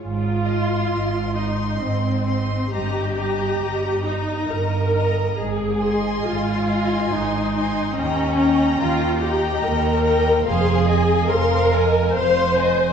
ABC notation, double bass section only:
X:1
M:3/4
L:1/8
Q:1/4=70
K:Ab
V:1 name="Double bass section" clef=bass
A,,,2 A,,,2 A,,,2 | G,,,2 G,,,2 G,,,2 | A,,,2 A,,,2 A,,,2 | E,,2 E,,2 E,,2 |
F,,,2 F,,,2 F,,,2 |]